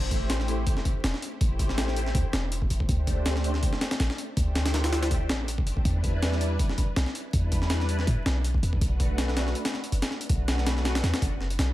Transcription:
Already playing: A1 A3 E4 G4 C5
0.11 kick, closed hi-hat
0.30 snare, closed hi-hat
0.40 snare
0.48 closed hi-hat
0.67 kick, closed hi-hat
0.77 snare
0.85 kick, closed hi-hat
1.04 E1, snare, closed hi-hat
1.14 snare
1.22 closed hi-hat
1.41 A1 A3 E4 G4 C5, kick, closed hi-hat
1.59 kick, closed hi-hat
1.69 snare
1.78 snare, closed hi-hat
1.88 snare
1.96 closed hi-hat
2.06 snare
2.15 D2, kick, closed hi-hat
2.33 E1, snare, closed hi-hat
2.52 closed hi-hat
2.62 kick
2.70 A1, closed hi-hat
2.80 kick
2.89 D2 A3 D4 G4 C5, kick, closed hi-hat
3.07 kick, closed hi-hat
3.26 snare, closed hi-hat
3.36 snare
3.44 closed hi-hat
3.54 snare
3.63 kick, closed hi-hat
3.73 snare
3.81 snare, closed hi-hat
3.91 snare, closed hi-hat
4.00 A1, snare, closed hi-hat
4.10 snare
4.18 closed hi-hat
4.37 D2 A3 D4 G4 C5, kick, closed hi-hat
4.55 snare, closed hi-hat
4.66 snare, closed hi-hat
4.74 snare, closed hi-hat
4.84 snare, closed hi-hat
4.93 snare, closed hi-hat
5.03 snare, closed hi-hat
5.11 kick, closed hi-hat
5.29 A1, snare, closed hi-hat
5.48 closed hi-hat
5.58 kick
5.67 closed hi-hat
5.77 kick
5.85 E2 G3 D4 E4 B4, kick, closed hi-hat
6.04 kick, closed hi-hat
6.23 snare, closed hi-hat
6.32 snare
6.41 closed hi-hat
6.59 kick, closed hi-hat
6.69 snare
6.78 kick, closed hi-hat
6.96 B1, snare, closed hi-hat
7.06 snare
7.15 closed hi-hat
7.33 E2 G3 D4 E4 B4, kick, closed hi-hat
7.52 kick, closed hi-hat
7.62 snare
7.70 snare, closed hi-hat
7.80 snare
7.89 closed hi-hat
7.99 snare
8.07 A2, kick, closed hi-hat
8.26 B1, snare, closed hi-hat
8.44 closed hi-hat
8.54 kick
8.63 E2, closed hi-hat
8.73 kick
8.81 B1 A3 D4 F#4 B4, kick, closed hi-hat
9.00 kick, closed hi-hat
9.18 snare, closed hi-hat
9.28 snare
9.37 snare, closed hi-hat
9.47 snare
9.55 closed hi-hat
9.65 snare, closed hi-hat
9.74 snare
9.84 closed hi-hat
9.92 F#1, closed hi-hat
10.02 snare, closed hi-hat
10.11 snare
10.21 closed hi-hat
10.29 B1 A3 D4 F#4 B4, kick, closed hi-hat
10.48 snare, closed hi-hat
10.58 snare
10.66 snare, closed hi-hat
10.77 snare
10.85 snare, closed hi-hat
10.95 snare, closed hi-hat
11.03 E2, snare, closed hi-hat
11.14 snare, closed hi-hat
11.22 F#1, kick, closed hi-hat
11.41 snare
11.50 closed hi-hat
11.59 B1, snare, closed hi-hat

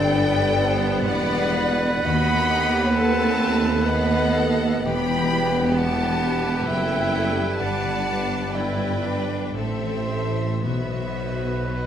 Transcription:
Already playing: G1 G2 D3 G3 C4 D4 G4 A4 B4 D5 G5 D6
0.15 B3 B4
0.40 D5
0.62 C5 G5
0.84 B5
1.05 E1 E2 B4 D5 F#5 G5
1.31 D5
1.55 B4
1.81 D4
2.04 D#2 D#3 A3 B3 F#4 D#5 F#5 B5
2.29 D#4
2.49 A3 G4
2.73 F#4
2.92 C4 A4 B4 F#5 A5
3.61 B5
3.84 B3 A4 B4 D#5 F#5
4.09 A4
4.34 A4 B4
4.61 A3
4.84 E1 E2 E3 G3 B3 G4 B4 G5 B5
5.09 G3
5.33 E4
5.77 G4 F#5 A5
5.99 E5
6.23 B5
6.45 G5
6.67 F#1 F#2 E4 A4 E5 G5 B5
7.13 G4
7.36 E4
7.58 G1 G2 B3 D4 B4 D5 F#5 A5
7.83 D3
8.06 B3 D4
8.31 D4
8.54 E4 B4 D5 G5
8.80 D4
9.05 D4 D5
9.31 B5
9.56 A1 A2 A3 C4 E4 A4 C5 E5
9.82 E3
10.08 A4 C5
10.36 C4
10.64 B1 B2 F#3 B3 F#4 B4 C5 E5
10.93 B3
11.20 F#3
11.48 F#4
11.76 B4 D#5

